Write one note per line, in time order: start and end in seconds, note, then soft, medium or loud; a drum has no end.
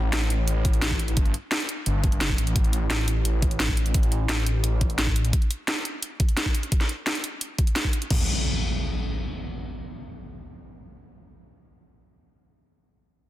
0.00 1.16 A1 medium
0.13 snare loud
0.13 closed hi-hat medium
0.30 closed hi-hat medium
0.48 closed hi-hat medium
0.65 kick loud
0.65 closed hi-hat medium
0.73 closed hi-hat soft
0.82 snare loud
0.82 closed hi-hat medium
0.91 kick medium
0.99 closed hi-hat medium
1.08 closed hi-hat soft
1.17 1.33 G1 loud
1.17 kick loud
1.17 closed hi-hat medium
1.26 closed hi-hat soft
1.34 closed hi-hat medium
1.52 snare loud
1.52 closed hi-hat medium
1.60 closed hi-hat soft
1.69 closed hi-hat medium
1.86 2.37 G1 medium
1.86 closed hi-hat medium
2.04 kick loud
2.04 closed hi-hat medium
2.12 closed hi-hat soft
2.21 snare loud
2.21 closed hi-hat medium
2.30 kick medium
2.38 2.54 A1 loud
2.38 closed hi-hat medium
2.47 closed hi-hat soft
2.56 3.93 A1 loud
2.56 kick loud
2.56 closed hi-hat medium
2.64 closed hi-hat soft
2.73 closed hi-hat medium
2.90 snare loud
2.90 closed hi-hat medium
3.08 closed hi-hat medium
3.25 closed hi-hat medium
3.42 kick loud
3.42 closed hi-hat medium
3.51 closed hi-hat soft
3.60 snare loud
3.60 closed hi-hat medium
3.68 kick medium
3.77 closed hi-hat medium
3.86 closed hi-hat soft
3.94 5.32 A1 medium
3.94 kick loud
3.94 closed hi-hat loud
4.03 closed hi-hat soft
4.12 closed hi-hat medium
4.29 snare loud
4.29 closed hi-hat medium
4.46 closed hi-hat medium
4.64 closed hi-hat medium
4.81 kick loud
4.81 closed hi-hat medium
4.90 closed hi-hat soft
4.98 snare loud
4.98 closed hi-hat medium
5.07 kick medium
5.16 closed hi-hat medium
5.25 closed hi-hat soft
5.33 kick loud
5.33 closed hi-hat loud
5.42 closed hi-hat soft
5.51 closed hi-hat medium
5.68 snare loud
5.68 closed hi-hat medium
5.85 closed hi-hat medium
6.03 closed hi-hat medium
6.20 kick loud
6.20 closed hi-hat medium
6.29 closed hi-hat soft
6.37 snare loud
6.37 closed hi-hat medium
6.46 kick medium
6.55 closed hi-hat medium
6.63 closed hi-hat soft
6.72 kick loud
6.72 closed hi-hat medium
6.81 snare soft
6.81 closed hi-hat soft
6.89 closed hi-hat medium
7.07 snare loud
7.07 closed hi-hat loud
7.15 closed hi-hat soft
7.24 closed hi-hat medium
7.41 closed hi-hat medium
7.58 kick loud
7.58 closed hi-hat medium
7.67 closed hi-hat soft
7.76 snare loud
7.76 closed hi-hat loud
7.85 kick medium
7.93 closed hi-hat medium
8.02 closed hi-hat soft
8.10 kick loud
8.10 crash medium
8.10 impact medium